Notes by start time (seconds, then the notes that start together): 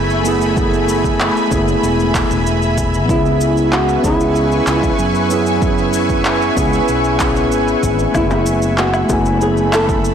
Already playing: F#1 A3 B3 E4 G#4 E5 G#5 B5
0.10 shaker
0.24 A3 B3 E4 G#4, shaker
0.42 shaker
0.53 A3 B3, kick
0.57 E4 G#4, shaker
0.73 shaker
0.89 shaker
1.04 kick, shaker
1.20 clap, shaker
1.37 shaker
1.48 F#1 A3 B3, kick
1.52 E4 G#4, shaker
1.68 shaker
1.83 E1, shaker
2.00 shaker
2.15 kick, clap, shaker
2.30 E1, shaker
2.47 shaker
2.62 shaker
2.78 kick, shaker
2.94 shaker
3.05 B3 C#4 B4
3.09 C#2 E4 G#4 E5 G#5 C#6, kick, shaker
3.26 shaker
3.41 shaker
3.57 shaker
3.73 F#4, clap, shaker
3.89 shaker
4.00 B3 C#4
4.04 C#2 E4 G#4, kick, shaker
4.21 shaker
4.36 shaker
4.52 shaker
4.67 C#2, clap, shaker
4.83 kick, shaker
4.99 F#2, shaker
5.15 shaker
5.29 B3 C#4 E4 G#4, shaker
5.47 shaker
5.59 B3 C#4, kick, shaker
5.64 E4 G#4
5.78 shaker
5.93 shaker
6.09 kick, shaker
6.21 D4, clap, shaker
6.42 shaker
6.55 C#2 B3 C#4 E4 G#4, kick, shaker
6.73 shaker
6.88 B1, shaker
7.04 shaker
7.16 B3, clap, shaker
7.20 E4 G#4, kick
7.36 shaker
7.52 G#1, shaker
7.68 shaker
7.83 G#1, kick, shaker
7.99 shaker
8.11 F#1 A3 B3 E5 B5, kick, low woodblock, shaker
8.16 E4 G#4
8.31 high bongo, shaker
8.46 shaker
8.62 shaker
8.78 F#4, clap, shaker
8.94 low woodblock, shaker
9.06 F#1 A3 B3, shaker
9.10 E4 G#5, kick, high bongo
9.26 shaker
9.41 G#4, shaker
9.57 shaker
9.73 A4, clap, low woodblock, shaker
9.89 kick, shaker
10.05 shaker